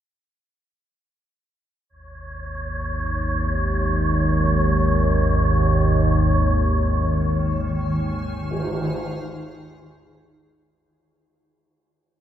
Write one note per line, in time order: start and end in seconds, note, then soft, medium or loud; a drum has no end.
1.89 10.83 G#1 medium
1.89 10.83 D#2 medium
1.89 10.74 C#5 medium
6.32 10.72 D#3 medium
7.15 10.71 G#5 medium
7.73 10.70 D#4 medium
8.27 10.70 G#4 medium
8.51 tam-tam medium